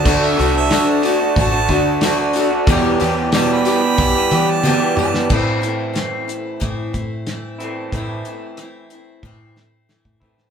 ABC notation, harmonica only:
X:1
M:4/4
L:1/16
Q:1/4=92
K:Ador
V:1 name="Harmonica"
a e2 e2 a3 a4 z4 | z4 a b6 a3 a2 | z16 | z16 |]